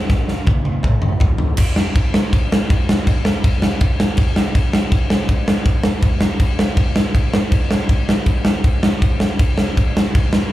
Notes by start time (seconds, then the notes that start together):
0.09 kick, snare
0.28 snare
0.47 kick, high tom
0.65 high tom
0.83 kick, mid tom
1.02 mid tom
1.20 kick, floor tom
1.38 floor tom
1.57 kick, crash
1.76 snare
1.95 kick, crash
2.14 snare
2.33 kick, crash
2.52 snare
2.70 kick, crash
2.89 snare
3.07 kick, crash
3.25 snare
3.44 kick, crash
3.62 snare
3.81 kick, crash
4.00 snare
4.17 kick, crash
4.36 snare
4.55 kick, crash
4.73 snare
4.92 kick, crash
5.10 snare
5.29 kick, crash
5.48 snare
5.65 kick, crash
5.83 snare
6.02 kick, crash
6.21 snare
6.40 kick, crash
6.59 snare
6.77 kick, crash
6.96 snare
7.15 kick, crash
7.33 snare
7.52 kick, crash
7.71 snare
7.89 kick, crash
8.09 snare
8.26 kick, crash
8.45 snare
8.64 kick, crash
8.83 snare
9.02 kick, crash
9.20 snare
9.39 kick, crash
9.58 snare
9.77 kick, crash
9.97 snare
10.15 kick, crash
10.33 snare